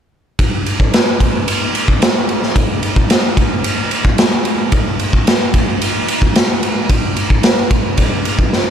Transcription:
0.39 kick, ride
0.66 ride
0.80 kick
0.93 snare, ride
1.20 kick, ride
1.48 ride
1.75 ride
1.88 kick
2.02 snare, ride
2.29 ride
2.43 snare
2.56 kick, ride
2.83 ride
2.96 kick
3.10 snare, ride
3.37 kick, ride
3.64 ride
3.91 ride
4.05 kick
4.18 snare, ride
4.45 ride
4.72 kick, ride
4.99 ride
5.13 kick
5.27 snare, ride
5.54 kick, ride
5.82 ride
6.08 ride
6.22 kick
6.35 snare, ride
6.63 ride
6.89 kick, ride
7.16 ride
7.30 kick
7.43 snare, ride
7.71 kick, ride
7.97 kick, ride
8.25 ride
8.39 kick
8.53 snare

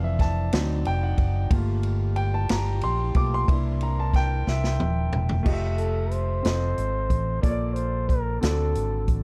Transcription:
Already playing: F1 D3 E3 F3 C4 D4 D5 F5
0.04 E5
0.19 A5, kick, snare, ride
0.52 D2 F#3 C4 D#4 F#4, snare, ride
0.85 F1 G5, ride
1.03 F#5
1.18 F#1, kick, ride
1.50 G1 G3 A3 A#3 F4 G4, kick, ride
1.83 ride
2.16 G5, ride
2.34 A5
2.49 G1 A#5, snare, ride
2.81 A#1 C6, ride
3.14 B1 A3 A#3 F4 D6, kick, ride
3.34 C6
3.47 C2 A#3 C4 D4 E4 A#4, kick, ride
3.81 A#5, ride
4.00 A5
4.14 G5, kick, snare, ride
4.47 C2 E5, snare
4.64 snare
4.80 D#1, high tom
5.13 E1, mid tom
5.29 floor tom
5.43 F1 A3 F4 G4 D#5, kick, crash
5.53 E5
5.78 A4, closed hi-hat
6.11 C5, closed hi-hat
6.43 F1 C4 F4 A4 D#5, snare, closed hi-hat
6.78 G#1, closed hi-hat
7.10 A1, kick, closed hi-hat
7.41 A#1 A#2 A#3 F4 A4 C#5 D5, kick, closed hi-hat
7.51 D5
7.74 C5, closed hi-hat
8.09 A#4, kick, closed hi-hat
8.41 D2 D3 C4 F#4 A4 D5, snare, closed hi-hat
8.75 G#1, closed hi-hat
9.08 A1, kick, closed hi-hat

